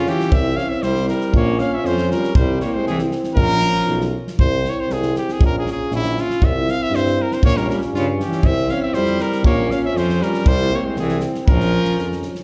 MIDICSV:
0, 0, Header, 1, 7, 480
1, 0, Start_track
1, 0, Tempo, 507185
1, 293, Time_signature, 2, 2, 24, 8
1, 11769, End_track
2, 0, Start_track
2, 0, Title_t, "Cornet"
2, 0, Program_c, 0, 56
2, 79, Note_on_c, 0, 67, 93
2, 313, Note_on_c, 0, 76, 97
2, 327, Note_off_c, 0, 67, 0
2, 538, Note_on_c, 0, 77, 86
2, 552, Note_off_c, 0, 76, 0
2, 653, Note_on_c, 0, 76, 91
2, 667, Note_off_c, 0, 77, 0
2, 787, Note_on_c, 0, 72, 109
2, 801, Note_off_c, 0, 76, 0
2, 1022, Note_off_c, 0, 72, 0
2, 1031, Note_on_c, 0, 70, 85
2, 1248, Note_off_c, 0, 70, 0
2, 1291, Note_on_c, 0, 73, 90
2, 1505, Note_on_c, 0, 77, 80
2, 1519, Note_off_c, 0, 73, 0
2, 1651, Note_on_c, 0, 76, 88
2, 1665, Note_off_c, 0, 77, 0
2, 1764, Note_on_c, 0, 72, 101
2, 1778, Note_off_c, 0, 76, 0
2, 1993, Note_off_c, 0, 72, 0
2, 2008, Note_on_c, 0, 70, 85
2, 2219, Note_off_c, 0, 70, 0
2, 2231, Note_on_c, 0, 72, 91
2, 2451, Note_off_c, 0, 72, 0
2, 2474, Note_on_c, 0, 73, 80
2, 2589, Note_on_c, 0, 72, 90
2, 2603, Note_off_c, 0, 73, 0
2, 2706, Note_off_c, 0, 72, 0
2, 2723, Note_on_c, 0, 68, 90
2, 2827, Note_off_c, 0, 68, 0
2, 3176, Note_on_c, 0, 70, 125
2, 3863, Note_off_c, 0, 70, 0
2, 4165, Note_on_c, 0, 72, 110
2, 4443, Note_on_c, 0, 73, 90
2, 4457, Note_off_c, 0, 72, 0
2, 4547, Note_on_c, 0, 72, 91
2, 4561, Note_off_c, 0, 73, 0
2, 4664, Note_on_c, 0, 68, 96
2, 4679, Note_off_c, 0, 72, 0
2, 4885, Note_off_c, 0, 68, 0
2, 4904, Note_on_c, 0, 67, 83
2, 5041, Note_on_c, 0, 68, 78
2, 5055, Note_off_c, 0, 67, 0
2, 5133, Note_off_c, 0, 68, 0
2, 5163, Note_on_c, 0, 70, 100
2, 5248, Note_off_c, 0, 70, 0
2, 5290, Note_on_c, 0, 68, 87
2, 5371, Note_off_c, 0, 68, 0
2, 5412, Note_on_c, 0, 68, 88
2, 5604, Note_off_c, 0, 68, 0
2, 5631, Note_on_c, 0, 64, 108
2, 5874, Note_on_c, 0, 65, 90
2, 5888, Note_off_c, 0, 64, 0
2, 6104, Note_on_c, 0, 76, 99
2, 6118, Note_off_c, 0, 65, 0
2, 6345, Note_on_c, 0, 77, 104
2, 6359, Note_off_c, 0, 76, 0
2, 6460, Note_on_c, 0, 76, 108
2, 6475, Note_off_c, 0, 77, 0
2, 6585, Note_on_c, 0, 72, 104
2, 6599, Note_off_c, 0, 76, 0
2, 6834, Note_on_c, 0, 70, 89
2, 6848, Note_off_c, 0, 72, 0
2, 6944, Note_on_c, 0, 72, 78
2, 6958, Note_off_c, 0, 70, 0
2, 7042, Note_off_c, 0, 72, 0
2, 7051, Note_on_c, 0, 73, 124
2, 7167, Note_on_c, 0, 70, 94
2, 7181, Note_off_c, 0, 73, 0
2, 7273, Note_off_c, 0, 70, 0
2, 7287, Note_on_c, 0, 70, 68
2, 7389, Note_off_c, 0, 70, 0
2, 7527, Note_on_c, 0, 65, 89
2, 7629, Note_off_c, 0, 65, 0
2, 7768, Note_on_c, 0, 67, 84
2, 8006, Note_on_c, 0, 76, 102
2, 8020, Note_off_c, 0, 67, 0
2, 8238, Note_on_c, 0, 77, 82
2, 8252, Note_off_c, 0, 76, 0
2, 8348, Note_off_c, 0, 77, 0
2, 8356, Note_on_c, 0, 76, 88
2, 8463, Note_on_c, 0, 72, 99
2, 8477, Note_off_c, 0, 76, 0
2, 8725, Note_on_c, 0, 70, 89
2, 8739, Note_off_c, 0, 72, 0
2, 8944, Note_off_c, 0, 70, 0
2, 8950, Note_on_c, 0, 73, 90
2, 9189, Note_on_c, 0, 77, 69
2, 9203, Note_off_c, 0, 73, 0
2, 9302, Note_off_c, 0, 77, 0
2, 9323, Note_on_c, 0, 76, 91
2, 9441, Note_on_c, 0, 72, 82
2, 9455, Note_off_c, 0, 76, 0
2, 9682, Note_on_c, 0, 70, 90
2, 9696, Note_off_c, 0, 72, 0
2, 9918, Note_on_c, 0, 72, 108
2, 9932, Note_off_c, 0, 70, 0
2, 10181, Note_on_c, 0, 73, 78
2, 10195, Note_off_c, 0, 72, 0
2, 10288, Note_on_c, 0, 72, 74
2, 10303, Note_off_c, 0, 73, 0
2, 10390, Note_off_c, 0, 72, 0
2, 10403, Note_on_c, 0, 68, 76
2, 10612, Note_off_c, 0, 68, 0
2, 10863, Note_on_c, 0, 70, 109
2, 11540, Note_off_c, 0, 70, 0
2, 11769, End_track
3, 0, Start_track
3, 0, Title_t, "Euphonium"
3, 0, Program_c, 1, 58
3, 0, Note_on_c, 1, 65, 72
3, 290, Note_on_c, 1, 64, 61
3, 304, Note_off_c, 1, 65, 0
3, 1249, Note_on_c, 1, 65, 77
3, 1263, Note_off_c, 1, 64, 0
3, 2215, Note_off_c, 1, 65, 0
3, 2220, Note_on_c, 1, 64, 65
3, 3185, Note_on_c, 1, 65, 66
3, 3199, Note_off_c, 1, 64, 0
3, 3954, Note_off_c, 1, 65, 0
3, 4145, Note_on_c, 1, 64, 57
3, 5115, Note_on_c, 1, 65, 59
3, 5129, Note_off_c, 1, 64, 0
3, 6063, Note_on_c, 1, 64, 79
3, 6077, Note_off_c, 1, 65, 0
3, 7015, Note_on_c, 1, 65, 70
3, 7029, Note_off_c, 1, 64, 0
3, 7784, Note_off_c, 1, 65, 0
3, 7963, Note_on_c, 1, 64, 66
3, 8931, Note_on_c, 1, 65, 61
3, 8946, Note_off_c, 1, 64, 0
3, 9886, Note_off_c, 1, 65, 0
3, 9891, Note_on_c, 1, 64, 60
3, 10871, Note_on_c, 1, 65, 66
3, 10886, Note_off_c, 1, 64, 0
3, 11631, Note_off_c, 1, 65, 0
3, 11769, End_track
4, 0, Start_track
4, 0, Title_t, "Trombone"
4, 0, Program_c, 2, 57
4, 0, Note_on_c, 2, 61, 68
4, 318, Note_on_c, 2, 60, 57
4, 332, Note_off_c, 2, 61, 0
4, 1282, Note_on_c, 2, 61, 77
4, 1296, Note_off_c, 2, 60, 0
4, 2243, Note_on_c, 2, 60, 68
4, 2257, Note_off_c, 2, 61, 0
4, 3209, Note_on_c, 2, 61, 64
4, 3223, Note_off_c, 2, 60, 0
4, 3966, Note_off_c, 2, 61, 0
4, 4160, Note_on_c, 2, 60, 59
4, 5123, Note_on_c, 2, 61, 61
4, 5137, Note_off_c, 2, 60, 0
4, 6072, Note_off_c, 2, 61, 0
4, 6086, Note_on_c, 2, 60, 61
4, 7039, Note_on_c, 2, 61, 65
4, 7053, Note_off_c, 2, 60, 0
4, 8000, Note_on_c, 2, 60, 62
4, 8014, Note_off_c, 2, 61, 0
4, 8952, Note_on_c, 2, 61, 60
4, 8966, Note_off_c, 2, 60, 0
4, 9911, Note_on_c, 2, 60, 72
4, 9926, Note_off_c, 2, 61, 0
4, 10881, Note_on_c, 2, 61, 68
4, 10895, Note_off_c, 2, 60, 0
4, 11636, Note_off_c, 2, 61, 0
4, 11769, End_track
5, 0, Start_track
5, 0, Title_t, "Alto saxophone"
5, 0, Program_c, 3, 65
5, 67, Note_on_c, 3, 52, 66
5, 288, Note_on_c, 3, 60, 84
5, 302, Note_off_c, 3, 52, 0
5, 533, Note_on_c, 3, 61, 72
5, 547, Note_off_c, 3, 60, 0
5, 661, Note_on_c, 3, 60, 77
5, 675, Note_off_c, 3, 61, 0
5, 796, Note_on_c, 3, 55, 94
5, 810, Note_off_c, 3, 60, 0
5, 1027, Note_off_c, 3, 55, 0
5, 1045, Note_on_c, 3, 55, 65
5, 1256, Note_off_c, 3, 55, 0
5, 1286, Note_on_c, 3, 58, 83
5, 1529, Note_on_c, 3, 61, 70
5, 1543, Note_off_c, 3, 58, 0
5, 1668, Note_on_c, 3, 60, 73
5, 1682, Note_off_c, 3, 61, 0
5, 1783, Note_on_c, 3, 53, 93
5, 1798, Note_off_c, 3, 60, 0
5, 2002, Note_off_c, 3, 53, 0
5, 2032, Note_on_c, 3, 55, 65
5, 2232, Note_off_c, 3, 55, 0
5, 2253, Note_on_c, 3, 55, 81
5, 2462, Note_off_c, 3, 55, 0
5, 2504, Note_on_c, 3, 58, 73
5, 2618, Note_on_c, 3, 56, 60
5, 2632, Note_off_c, 3, 58, 0
5, 2720, Note_off_c, 3, 56, 0
5, 2743, Note_on_c, 3, 52, 79
5, 2843, Note_off_c, 3, 52, 0
5, 3202, Note_on_c, 3, 53, 85
5, 3876, Note_off_c, 3, 53, 0
5, 7049, Note_on_c, 3, 58, 91
5, 7172, Note_on_c, 3, 55, 68
5, 7186, Note_off_c, 3, 58, 0
5, 7276, Note_off_c, 3, 55, 0
5, 7309, Note_on_c, 3, 55, 65
5, 7406, Note_off_c, 3, 55, 0
5, 7547, Note_on_c, 3, 49, 84
5, 7644, Note_off_c, 3, 49, 0
5, 7793, Note_on_c, 3, 52, 77
5, 8025, Note_on_c, 3, 60, 98
5, 8040, Note_off_c, 3, 52, 0
5, 8256, Note_on_c, 3, 61, 77
5, 8270, Note_off_c, 3, 60, 0
5, 8357, Note_off_c, 3, 61, 0
5, 8366, Note_on_c, 3, 60, 73
5, 8474, Note_on_c, 3, 55, 84
5, 8488, Note_off_c, 3, 60, 0
5, 8707, Note_off_c, 3, 55, 0
5, 8707, Note_on_c, 3, 55, 73
5, 8940, Note_off_c, 3, 55, 0
5, 8950, Note_on_c, 3, 58, 85
5, 9201, Note_on_c, 3, 61, 64
5, 9215, Note_off_c, 3, 58, 0
5, 9308, Note_off_c, 3, 61, 0
5, 9334, Note_on_c, 3, 60, 70
5, 9449, Note_on_c, 3, 53, 85
5, 9463, Note_off_c, 3, 60, 0
5, 9672, Note_on_c, 3, 55, 72
5, 9686, Note_off_c, 3, 53, 0
5, 9912, Note_off_c, 3, 55, 0
5, 9912, Note_on_c, 3, 55, 84
5, 10152, Note_on_c, 3, 58, 70
5, 10166, Note_off_c, 3, 55, 0
5, 10264, Note_on_c, 3, 56, 56
5, 10278, Note_off_c, 3, 58, 0
5, 10378, Note_off_c, 3, 56, 0
5, 10408, Note_on_c, 3, 52, 79
5, 10614, Note_off_c, 3, 52, 0
5, 10858, Note_on_c, 3, 53, 91
5, 11538, Note_off_c, 3, 53, 0
5, 11769, End_track
6, 0, Start_track
6, 0, Title_t, "Tuba"
6, 0, Program_c, 4, 58
6, 292, Note_on_c, 4, 36, 101
6, 558, Note_off_c, 4, 36, 0
6, 781, Note_on_c, 4, 36, 90
6, 1045, Note_off_c, 4, 36, 0
6, 1259, Note_on_c, 4, 34, 110
6, 1524, Note_off_c, 4, 34, 0
6, 1740, Note_on_c, 4, 41, 99
6, 2005, Note_off_c, 4, 41, 0
6, 2225, Note_on_c, 4, 36, 96
6, 2488, Note_off_c, 4, 36, 0
6, 2692, Note_on_c, 4, 36, 75
6, 2960, Note_off_c, 4, 36, 0
6, 3170, Note_on_c, 4, 34, 98
6, 3439, Note_off_c, 4, 34, 0
6, 3656, Note_on_c, 4, 35, 78
6, 3923, Note_off_c, 4, 35, 0
6, 4155, Note_on_c, 4, 36, 96
6, 4417, Note_off_c, 4, 36, 0
6, 4613, Note_on_c, 4, 36, 89
6, 4880, Note_off_c, 4, 36, 0
6, 5099, Note_on_c, 4, 34, 98
6, 5364, Note_off_c, 4, 34, 0
6, 5591, Note_on_c, 4, 34, 94
6, 5853, Note_off_c, 4, 34, 0
6, 6062, Note_on_c, 4, 36, 93
6, 6326, Note_off_c, 4, 36, 0
6, 6533, Note_on_c, 4, 43, 88
6, 6799, Note_off_c, 4, 43, 0
6, 7023, Note_on_c, 4, 34, 94
6, 7286, Note_off_c, 4, 34, 0
6, 7498, Note_on_c, 4, 43, 95
6, 7762, Note_off_c, 4, 43, 0
6, 7977, Note_on_c, 4, 36, 91
6, 8240, Note_off_c, 4, 36, 0
6, 8453, Note_on_c, 4, 41, 75
6, 8717, Note_off_c, 4, 41, 0
6, 8923, Note_on_c, 4, 34, 93
6, 9189, Note_off_c, 4, 34, 0
6, 9408, Note_on_c, 4, 41, 91
6, 9672, Note_off_c, 4, 41, 0
6, 9889, Note_on_c, 4, 36, 115
6, 10153, Note_off_c, 4, 36, 0
6, 10371, Note_on_c, 4, 36, 98
6, 10635, Note_off_c, 4, 36, 0
6, 10862, Note_on_c, 4, 34, 106
6, 11123, Note_off_c, 4, 34, 0
6, 11330, Note_on_c, 4, 41, 76
6, 11595, Note_off_c, 4, 41, 0
6, 11769, End_track
7, 0, Start_track
7, 0, Title_t, "Drums"
7, 61, Note_on_c, 9, 38, 29
7, 155, Note_off_c, 9, 38, 0
7, 188, Note_on_c, 9, 38, 26
7, 283, Note_off_c, 9, 38, 0
7, 301, Note_on_c, 9, 36, 100
7, 396, Note_off_c, 9, 36, 0
7, 544, Note_on_c, 9, 38, 21
7, 639, Note_off_c, 9, 38, 0
7, 779, Note_on_c, 9, 38, 26
7, 874, Note_off_c, 9, 38, 0
7, 898, Note_on_c, 9, 38, 21
7, 993, Note_off_c, 9, 38, 0
7, 1024, Note_on_c, 9, 38, 28
7, 1119, Note_off_c, 9, 38, 0
7, 1144, Note_on_c, 9, 38, 21
7, 1238, Note_off_c, 9, 38, 0
7, 1264, Note_on_c, 9, 36, 84
7, 1359, Note_off_c, 9, 36, 0
7, 1502, Note_on_c, 9, 38, 22
7, 1596, Note_off_c, 9, 38, 0
7, 1751, Note_on_c, 9, 38, 21
7, 1846, Note_off_c, 9, 38, 0
7, 1870, Note_on_c, 9, 38, 25
7, 1965, Note_off_c, 9, 38, 0
7, 1998, Note_on_c, 9, 38, 27
7, 2093, Note_off_c, 9, 38, 0
7, 2115, Note_on_c, 9, 38, 23
7, 2210, Note_off_c, 9, 38, 0
7, 2225, Note_on_c, 9, 36, 107
7, 2320, Note_off_c, 9, 36, 0
7, 2465, Note_on_c, 9, 38, 24
7, 2560, Note_off_c, 9, 38, 0
7, 2712, Note_on_c, 9, 38, 21
7, 2807, Note_off_c, 9, 38, 0
7, 2826, Note_on_c, 9, 38, 23
7, 2921, Note_off_c, 9, 38, 0
7, 2947, Note_on_c, 9, 38, 25
7, 3042, Note_off_c, 9, 38, 0
7, 3063, Note_on_c, 9, 38, 24
7, 3158, Note_off_c, 9, 38, 0
7, 3188, Note_on_c, 9, 36, 78
7, 3282, Note_off_c, 9, 36, 0
7, 3317, Note_on_c, 9, 38, 23
7, 3411, Note_off_c, 9, 38, 0
7, 3427, Note_on_c, 9, 38, 22
7, 3522, Note_off_c, 9, 38, 0
7, 3552, Note_on_c, 9, 38, 23
7, 3646, Note_off_c, 9, 38, 0
7, 3672, Note_on_c, 9, 38, 26
7, 3767, Note_off_c, 9, 38, 0
7, 3794, Note_on_c, 9, 38, 26
7, 3889, Note_off_c, 9, 38, 0
7, 4045, Note_on_c, 9, 38, 29
7, 4140, Note_off_c, 9, 38, 0
7, 4154, Note_on_c, 9, 36, 90
7, 4248, Note_off_c, 9, 36, 0
7, 4397, Note_on_c, 9, 38, 24
7, 4491, Note_off_c, 9, 38, 0
7, 4634, Note_on_c, 9, 38, 26
7, 4729, Note_off_c, 9, 38, 0
7, 4757, Note_on_c, 9, 38, 28
7, 4851, Note_off_c, 9, 38, 0
7, 4879, Note_on_c, 9, 38, 26
7, 4973, Note_off_c, 9, 38, 0
7, 5003, Note_on_c, 9, 38, 23
7, 5097, Note_off_c, 9, 38, 0
7, 5116, Note_on_c, 9, 36, 107
7, 5211, Note_off_c, 9, 36, 0
7, 5360, Note_on_c, 9, 38, 23
7, 5455, Note_off_c, 9, 38, 0
7, 5597, Note_on_c, 9, 38, 27
7, 5692, Note_off_c, 9, 38, 0
7, 5714, Note_on_c, 9, 38, 24
7, 5808, Note_off_c, 9, 38, 0
7, 5841, Note_on_c, 9, 38, 28
7, 5935, Note_off_c, 9, 38, 0
7, 5963, Note_on_c, 9, 38, 24
7, 6057, Note_off_c, 9, 38, 0
7, 6074, Note_on_c, 9, 36, 91
7, 6169, Note_off_c, 9, 36, 0
7, 6322, Note_on_c, 9, 38, 23
7, 6417, Note_off_c, 9, 38, 0
7, 6567, Note_on_c, 9, 38, 28
7, 6661, Note_off_c, 9, 38, 0
7, 6686, Note_on_c, 9, 38, 29
7, 6781, Note_off_c, 9, 38, 0
7, 6925, Note_on_c, 9, 38, 28
7, 7019, Note_off_c, 9, 38, 0
7, 7030, Note_on_c, 9, 36, 103
7, 7125, Note_off_c, 9, 36, 0
7, 7160, Note_on_c, 9, 38, 28
7, 7255, Note_off_c, 9, 38, 0
7, 7290, Note_on_c, 9, 38, 28
7, 7385, Note_off_c, 9, 38, 0
7, 7393, Note_on_c, 9, 38, 23
7, 7488, Note_off_c, 9, 38, 0
7, 7525, Note_on_c, 9, 38, 29
7, 7619, Note_off_c, 9, 38, 0
7, 7761, Note_on_c, 9, 38, 30
7, 7856, Note_off_c, 9, 38, 0
7, 7876, Note_on_c, 9, 38, 24
7, 7970, Note_off_c, 9, 38, 0
7, 7980, Note_on_c, 9, 36, 86
7, 8075, Note_off_c, 9, 36, 0
7, 8223, Note_on_c, 9, 38, 21
7, 8317, Note_off_c, 9, 38, 0
7, 8458, Note_on_c, 9, 38, 29
7, 8552, Note_off_c, 9, 38, 0
7, 8573, Note_on_c, 9, 38, 24
7, 8668, Note_off_c, 9, 38, 0
7, 8697, Note_on_c, 9, 38, 31
7, 8792, Note_off_c, 9, 38, 0
7, 8823, Note_on_c, 9, 38, 25
7, 8917, Note_off_c, 9, 38, 0
7, 8938, Note_on_c, 9, 36, 91
7, 9032, Note_off_c, 9, 36, 0
7, 9187, Note_on_c, 9, 38, 27
7, 9282, Note_off_c, 9, 38, 0
7, 9432, Note_on_c, 9, 38, 28
7, 9527, Note_off_c, 9, 38, 0
7, 9553, Note_on_c, 9, 38, 24
7, 9647, Note_off_c, 9, 38, 0
7, 9671, Note_on_c, 9, 38, 30
7, 9766, Note_off_c, 9, 38, 0
7, 9784, Note_on_c, 9, 38, 27
7, 9879, Note_off_c, 9, 38, 0
7, 9898, Note_on_c, 9, 36, 106
7, 9993, Note_off_c, 9, 36, 0
7, 10374, Note_on_c, 9, 38, 31
7, 10469, Note_off_c, 9, 38, 0
7, 10496, Note_on_c, 9, 38, 30
7, 10591, Note_off_c, 9, 38, 0
7, 10601, Note_on_c, 9, 38, 36
7, 10696, Note_off_c, 9, 38, 0
7, 10739, Note_on_c, 9, 38, 28
7, 10834, Note_off_c, 9, 38, 0
7, 10861, Note_on_c, 9, 36, 115
7, 10955, Note_off_c, 9, 36, 0
7, 10981, Note_on_c, 9, 38, 25
7, 11075, Note_off_c, 9, 38, 0
7, 11212, Note_on_c, 9, 38, 27
7, 11306, Note_off_c, 9, 38, 0
7, 11342, Note_on_c, 9, 38, 23
7, 11436, Note_off_c, 9, 38, 0
7, 11469, Note_on_c, 9, 38, 23
7, 11564, Note_off_c, 9, 38, 0
7, 11568, Note_on_c, 9, 38, 30
7, 11663, Note_off_c, 9, 38, 0
7, 11688, Note_on_c, 9, 38, 25
7, 11769, Note_off_c, 9, 38, 0
7, 11769, End_track
0, 0, End_of_file